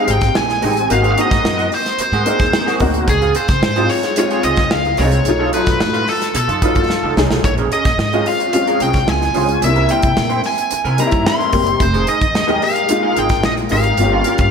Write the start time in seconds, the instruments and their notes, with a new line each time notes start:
Already playing: grand piano G3 G#3 C4 D#4 G4, lead electric guitar F5
0.07 upright bass G#1, clean electric guitar C4 D#4 G#4, closed hi-hat
0.11 lead electric guitar G5
0.21 muted clean electric guitar stroke, kick, snare, closed hi-hat
0.35 upright bass A#1, lead electric guitar G#5, muted clean electric guitar stroke, snare
0.49 muted clean electric guitar stroke, snare, closed hi-hat
0.62 upright bass A1, grand piano G#3 C4 D#4 G4, clean electric guitar C4 D#4 A#4, open hi-hat
0.75 muted clean electric guitar stroke, closed hi-hat
0.88 upright bass G#1, grand piano A#3 C4 D#4 F#4, muted clean electric guitar stroke, closed hi-hat
0.93 lead electric guitar F5
1.02 clean electric guitar C4 F#4 G#4, closed hi-hat
1.12 lead electric guitar F5
1.16 grand piano A#3 C4 D#4 F#4, clean electric guitar C4 F#4 G#4, closed hi-hat
1.21 lead electric guitar D#5
1.30 upright bass G#2, muted clean electric guitar stroke, kick, snare, closed hi-hat
1.44 upright bass F#2, muted clean electric guitar stroke, snare
1.57 clean electric guitar C4 F#4 A#4, closed hi-hat
1.71 lead electric guitar C5, muted clean electric guitar stroke, open hi-hat
1.86 muted clean electric guitar stroke, snare, closed hi-hat
1.98 lead electric guitar C5, muted upright bass stroke, muted clean electric guitar stroke, closed hi-hat
2.12 upright bass G#2, clean electric guitar C4 F#4 G#4, closed hi-hat
2.25 grand piano A#3 C4 D#4 G#4, clean electric guitar C4 F#4 A#4, closed hi-hat
2.39 upright bass D#2, muted clean electric guitar stroke, kick, snare, closed hi-hat
2.53 muted clean electric guitar stroke, snare
2.66 clean electric guitar C4 F#4 G#4, snare, closed hi-hat
2.80 upright bass D2, grand piano A#3 C4 D#4 F#4, muted clean electric guitar stroke, kick, open hi-hat
2.94 muted clean electric guitar stroke, closed hi-hat
3.07 upright bass C#2, lead electric guitar G#4, muted clean electric guitar stroke, kick, closed hi-hat
3.21 clean electric guitar C4 F4 G#4, closed hi-hat
3.35 clean electric guitar C4 F4 G#4, lead electric guitar C5, closed hi-hat
3.48 upright bass C#3, muted clean electric guitar stroke, kick, snare, closed hi-hat
3.61 upright bass G#2, muted clean electric guitar stroke, snare
3.76 grand piano G#3 C4 D#4 F4, clean electric guitar C4 F4 G#4, closed hi-hat
3.89 lead electric guitar C#5, muted clean electric guitar stroke, open hi-hat
4.03 muted clean electric guitar stroke, snare, closed hi-hat
4.16 grand piano G#3 C4 D#4 F4, lead electric guitar C#5, muted clean electric guitar stroke, closed hi-hat
4.31 clean electric guitar C4 F4 G#4, closed hi-hat
4.43 upright bass C#2, clean electric guitar C4 F4 G#4, lead electric guitar D#5, closed hi-hat
4.56 muted clean electric guitar stroke, kick, snare, closed hi-hat
4.71 upright bass C#2, lead electric guitar F5, muted clean electric guitar stroke, snare
4.85 muted clean electric guitar stroke, closed hi-hat
4.97 upright bass C2, grand piano G#3 C4 D#4 G#4, clean electric guitar C4 F4 A#4, lead electric guitar C#5, open hi-hat
5.12 muted clean electric guitar stroke, closed hi-hat
5.25 upright bass B1, grand piano F#3 A3 D#4 F4, muted clean electric guitar stroke, closed hi-hat
5.39 clean electric guitar D#4 F4 A4
5.53 grand piano F#3 A3 D#4 F4, clean electric guitar D#4 F4 A4, lead electric guitar B4, closed hi-hat
5.66 upright bass B2, muted clean electric guitar stroke, kick, snare, closed hi-hat
5.80 upright bass A2, lead electric guitar B4, muted clean electric guitar stroke, snare
5.93 clean electric guitar D#4 F4 B4, closed hi-hat
6.06 lead electric guitar A4, muted clean electric guitar stroke, open hi-hat
6.20 muted clean electric guitar stroke, snare, closed hi-hat
6.34 upright bass B2, lead electric guitar A4, muted clean electric guitar stroke, closed hi-hat
6.48 upright bass F#2, clean electric guitar D#4 F4 A4, closed hi-hat
6.62 grand piano F#3 A3 D#4 F4, clean electric guitar D#4 F4 B4, kick, closed hi-hat
6.75 upright bass D#2, muted clean electric guitar stroke, kick, closed hi-hat
6.89 muted clean electric guitar stroke, snare
7.03 upright bass C#2, clean electric guitar D#4 F4 A4
7.16 upright bass C2, grand piano F#3 A3 D#4 G#4, muted clean electric guitar stroke, snare
7.31 upright bass B1, muted clean electric guitar stroke, snare
7.44 upright bass A#1, lead electric guitar C#5, muted clean electric guitar stroke, kick, closed hi-hat
7.58 clean electric guitar C#4 G#4 A#4, closed hi-hat
7.72 clean electric guitar C#4 G#4 A#4, lead electric guitar D#5, closed hi-hat
7.85 upright bass A#2, muted clean electric guitar stroke, kick, snare, closed hi-hat
7.98 upright bass G#2, muted clean electric guitar stroke, snare
8.12 grand piano G#3 C4 C#4 F4, clean electric guitar C#4 G#4 A#4, closed hi-hat
8.26 lead electric guitar F5, muted clean electric guitar stroke, open hi-hat
8.40 muted clean electric guitar stroke, closed hi-hat
8.53 grand piano G#3 C4 C#4 F4, lead electric guitar F5, muted clean electric guitar stroke, closed hi-hat
8.67 clean electric guitar C#4 G#4 A#4, closed hi-hat
8.80 upright bass C2, clean electric guitar C#4 G#4 A#4, lead electric guitar G5, closed hi-hat
8.93 muted clean electric guitar stroke, kick, snare, closed hi-hat
9.07 upright bass C#2, lead electric guitar G#5, muted clean electric guitar stroke, snare
9.22 muted clean electric guitar stroke, snare, closed hi-hat
9.34 upright bass C#2, grand piano G#3 C4 C#4 F4, clean electric guitar C#4 G#4 C5, open hi-hat
9.48 muted clean electric guitar stroke, closed hi-hat
9.62 upright bass C2, grand piano G3 A#3 C4 E4, lead electric guitar E5, muted clean electric guitar stroke, closed hi-hat
9.76 clean electric guitar C4 E4 A#4, closed hi-hat
9.89 grand piano G3 A#3 C4 E4, clean electric guitar C4 E4 A#4, lead electric guitar G5, closed hi-hat
10.02 upright bass C3, muted clean electric guitar stroke, kick, closed hi-hat
10.17 upright bass A#2, muted clean electric guitar stroke, snare
10.29 clean electric guitar C4 E4 C5, closed hi-hat
10.43 lead electric guitar G#5, muted clean electric guitar stroke, open hi-hat
10.58 muted clean electric guitar stroke, closed hi-hat
10.71 muted upright bass stroke, muted clean electric guitar stroke, closed hi-hat
10.84 upright bass C3, clean electric guitar C4 E4 A#4, closed hi-hat
10.97 grand piano G3 A#3 C4 D#4, clean electric guitar C4 E4 C5, lead electric guitar A#5, closed hi-hat
11.05 grand piano E4
11.11 upright bass G2, muted clean electric guitar stroke, kick, closed hi-hat
11.26 lead electric guitar C6, muted clean electric guitar stroke, snare
11.39 clean electric guitar C4 E4 A#4, closed hi-hat
11.52 upright bass F#1, grand piano G3 A#3 C4 G4, muted clean electric guitar stroke, kick, open hi-hat
11.66 muted clean electric guitar stroke, closed hi-hat
11.80 upright bass F1, lead electric guitar C5, muted clean electric guitar stroke, kick, closed hi-hat
11.93 clean electric guitar D#4 G#4 A#4, closed hi-hat
12.07 clean electric guitar D#4 G#4 A#4, lead electric guitar D#5, closed hi-hat
12.21 upright bass F2, muted clean electric guitar stroke, kick, closed hi-hat
12.35 upright bass D#2, muted clean electric guitar stroke, snare
12.47 grand piano G#3 A#3 D#4 G4, clean electric guitar D#4 G#4 A#4, closed hi-hat
12.62 lead electric guitar F5, muted clean electric guitar stroke, open hi-hat
12.75 muted clean electric guitar stroke, closed hi-hat
12.89 grand piano G#3 A#3 D#4 F4, muted clean electric guitar stroke, closed hi-hat
13.03 clean electric guitar D#4 G#4 A#4
13.16 upright bass G#1, clean electric guitar D#4 G#4 A#4, lead electric guitar G5, closed hi-hat
13.29 muted clean electric guitar stroke, kick, snare, closed hi-hat
13.43 upright bass A#1, lead electric guitar D#5, muted clean electric guitar stroke, snare
13.57 muted clean electric guitar stroke, closed hi-hat
13.69 upright bass G#1, grand piano G#3 A#3 D#4 G4, clean electric guitar D#4 G#4 C5, lead electric guitar F5, open hi-hat
13.84 muted clean electric guitar stroke, closed hi-hat
13.97 upright bass G1, grand piano A#3 C#4 F4 G4, muted clean electric guitar stroke, closed hi-hat
14.12 clean electric guitar C#4 F4 A#4
14.24 grand piano A#3 C#4 F4 G4, clean electric guitar C#4 F4 A#4, closed hi-hat
14.38 upright bass G2, lead electric guitar F5, muted clean electric guitar stroke, kick, closed hi-hat